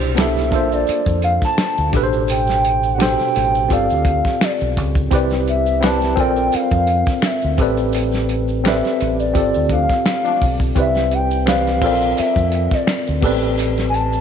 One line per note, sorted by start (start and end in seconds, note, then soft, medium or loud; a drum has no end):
0.00 0.53 C2 loud
0.00 0.55 B2 medium
0.00 0.16 D4 medium
0.00 0.17 E4 medium
0.00 0.19 G4 medium
0.00 0.54 C5 loud
0.00 maracas medium
0.15 0.51 B3 medium
0.15 0.51 D4 medium
0.15 0.52 E4 medium
0.15 0.53 G4 medium
0.15 finger snap medium
0.15 snare loud
0.15 closed hi-hat medium
0.15 maracas medium
0.19 0.53 A4 medium
0.19 0.74 E5 medium
0.37 snare soft
0.37 maracas soft
0.51 0.83 A#1 loud
0.51 1.65 A#3 medium
0.51 1.66 D4 medium
0.51 1.66 F4 medium
0.51 1.67 A4 medium
0.51 kick loud
0.51 closed hi-hat medium
0.51 maracas soft
0.55 1.67 C5 medium
0.72 1.24 D5 medium
0.72 maracas soft
0.87 muted fingered electric bass stroke medium
0.87 closed hi-hat medium
0.87 maracas medium
1.06 1.37 F2 medium
1.06 kick loud
1.06 maracas medium
1.22 1.33 F5 loud
1.22 closed hi-hat medium
1.42 1.91 A5 medium
1.42 kick medium
1.42 snare soft
1.42 maracas medium
1.58 finger snap medium
1.58 snare loud
1.58 closed hi-hat medium
1.58 maracas medium
1.77 1.92 D2 medium
1.77 maracas medium
1.92 3.15 A1 loud
1.92 2.79 B2 medium
1.92 2.79 D4 medium
1.92 2.80 G4 medium
1.92 2.80 A4 medium
1.92 kick loud
1.92 closed hi-hat medium
1.92 maracas medium
1.97 2.02 B4 medium
2.03 2.84 C5 loud
2.13 maracas soft
2.28 2.89 G5 loud
2.28 closed hi-hat medium
2.28 maracas medium
2.47 snare soft
2.47 maracas medium
2.65 closed hi-hat medium
2.83 maracas medium
2.95 3.69 B2 medium
2.95 3.70 D4 medium
2.95 3.03 F#5 medium
3.00 3.70 G4 medium
3.00 3.71 A4 medium
3.00 3.71 C5 medium
3.00 3.71 G5 loud
3.00 finger snap medium
3.00 snare loud
3.00 closed hi-hat medium
3.00 maracas medium
3.19 snare soft
3.19 maracas soft
3.35 3.66 A1 loud
3.35 closed hi-hat medium
3.35 maracas soft
3.55 maracas soft
3.69 3.87 G1 loud
3.69 4.83 C4 medium
3.69 4.84 F4 medium
3.69 4.84 G4 medium
3.69 4.85 A4 medium
3.69 kick medium
3.69 closed hi-hat medium
3.69 maracas medium
3.73 4.85 D5 medium
3.73 4.45 F5 loud
3.90 4.21 D2 medium
3.90 maracas medium
4.05 kick loud
4.05 closed hi-hat medium
4.25 kick medium
4.25 snare soft
4.25 maracas soft
4.41 4.97 D5 medium
4.41 finger snap medium
4.41 snare loud
4.41 closed hi-hat medium
4.41 maracas medium
4.61 4.78 B1 loud
4.61 maracas soft
4.77 5.08 C#2 medium
4.77 kick loud
4.77 closed hi-hat medium
4.77 maracas medium
4.95 kick loud
4.95 maracas medium
5.11 6.18 C2 loud
5.11 5.68 C4 medium
5.11 5.69 E4 medium
5.11 5.70 G4 medium
5.11 5.70 B4 medium
5.11 kick loud
5.11 closed hi-hat medium
5.11 maracas medium
5.15 5.71 D5 loud
5.30 snare soft
5.30 maracas medium
5.47 5.85 E5 medium
5.47 closed hi-hat medium
5.66 maracas medium
5.80 6.15 C4 medium
5.80 6.17 E4 medium
5.80 6.18 G4 medium
5.80 6.18 B4 medium
5.80 6.20 A5 loud
5.80 finger snap medium
5.80 snare loud
5.80 closed hi-hat medium
5.80 maracas medium
5.85 6.19 D5 medium
6.01 snare soft
6.01 maracas soft
6.16 6.48 A#1 loud
6.16 7.30 C4 medium
6.16 7.31 F4 medium
6.16 7.31 A4 medium
6.16 7.32 A#4 medium
6.16 6.56 G5 loud
6.16 kick loud
6.16 closed hi-hat medium
6.16 maracas soft
6.20 7.32 D5 medium
6.36 maracas soft
6.52 7.27 F5 loud
6.52 muted fingered electric bass stroke medium
6.52 closed hi-hat medium
6.52 maracas medium
6.71 7.02 F2 medium
6.71 kick loud
6.71 maracas soft
6.87 closed hi-hat medium
7.06 kick loud
7.06 snare soft
7.06 maracas medium
7.22 7.79 E5 medium
7.22 finger snap medium
7.22 snare loud
7.22 closed hi-hat medium
7.22 maracas medium
7.42 7.57 D2 medium
7.42 maracas soft
7.58 8.80 A1 medium
7.58 8.44 C4 medium
7.58 8.44 G4 medium
7.58 8.45 A4 medium
7.58 8.46 B4 medium
7.58 kick loud
7.58 closed hi-hat medium
7.58 maracas medium
7.63 8.46 D5 medium
7.77 maracas medium
7.93 closed hi-hat medium
7.93 maracas medium
8.12 snare soft
8.12 maracas medium
8.29 closed hi-hat medium
8.48 maracas medium
8.64 9.32 C4 medium
8.64 9.34 G4 medium
8.64 9.35 A4 medium
8.64 9.36 B4 medium
8.64 9.16 E5 medium
8.64 finger snap medium
8.64 snare loud
8.64 closed hi-hat medium
8.64 maracas medium
8.69 9.37 D5 medium
8.84 snare soft
8.84 maracas soft
9.00 9.36 A1 loud
9.00 closed hi-hat medium
9.00 maracas soft
9.20 9.67 D5 medium
9.20 maracas soft
9.34 9.52 G1 loud
9.34 10.48 C4 medium
9.34 10.48 F4 medium
9.34 10.49 G4 medium
9.34 10.49 A4 medium
9.34 kick loud
9.34 closed hi-hat medium
9.34 maracas medium
9.38 10.50 D5 medium
9.54 9.86 D2 medium
9.54 maracas medium
9.69 9.86 F3 medium
9.69 9.86 A3 medium
9.69 9.86 D4 medium
9.69 10.04 F5 loud
9.69 kick loud
9.69 closed hi-hat medium
9.89 kick medium
9.89 snare soft
9.89 maracas soft
10.06 10.57 F5 medium
10.06 finger snap medium
10.06 snare loud
10.06 closed hi-hat medium
10.06 maracas medium
10.24 10.47 F3 medium
10.24 10.47 A3 medium
10.24 10.47 D4 medium
10.24 maracas soft
10.42 10.72 B1 medium
10.42 kick loud
10.42 open hi-hat medium
10.42 maracas medium
10.60 kick loud
10.60 maracas medium
10.75 11.83 C2 loud
10.75 11.33 C4 medium
10.75 11.34 E4 medium
10.75 11.34 G4 medium
10.75 11.35 B4 medium
10.75 kick loud
10.75 closed hi-hat medium
10.75 maracas medium
10.79 11.35 D5 medium
10.79 11.16 E5 loud
10.95 snare soft
10.95 maracas medium
11.11 11.48 G5 loud
11.11 closed hi-hat medium
11.31 maracas medium
11.46 11.82 E3 medium
11.46 11.80 C4 medium
11.46 11.82 G4 medium
11.46 11.83 B4 medium
11.46 12.20 F5 loud
11.46 finger snap medium
11.46 snare loud
11.46 closed hi-hat medium
11.46 maracas medium
11.51 11.84 D5 medium
11.67 snare soft
11.67 maracas soft
11.81 12.13 A#1 loud
11.81 12.95 C4 medium
11.81 12.96 F4 medium
11.81 12.96 A4 medium
11.81 12.97 A#4 medium
11.81 kick loud
11.81 crash medium
11.81 maracas soft
11.86 12.97 D5 medium
12.01 maracas soft
12.17 12.76 E5 loud
12.17 muted fingered electric bass stroke soft
12.17 closed hi-hat medium
12.17 maracas medium
12.36 12.67 F2 medium
12.36 kick loud
12.36 maracas medium
12.52 closed hi-hat medium
12.71 13.24 D5 medium
12.71 kick loud
12.71 snare soft
12.71 maracas medium
12.87 finger snap medium
12.87 snare loud
12.87 closed hi-hat medium
12.87 maracas medium
13.07 13.22 D2 medium
13.07 maracas medium
13.21 14.21 A1 loud
13.21 13.29 B3 medium
13.21 14.09 G4 medium
13.21 14.09 A4 medium
13.21 kick loud
13.21 crash medium
13.21 maracas medium
13.26 14.11 C4 medium
13.26 14.10 B4 medium
13.26 14.11 D5 medium
13.42 maracas soft
13.58 closed hi-hat medium
13.58 maracas medium
13.77 snare soft
13.77 maracas medium
13.89 13.96 G#5 medium
13.94 14.21 A5 loud
13.94 closed hi-hat medium
14.13 maracas medium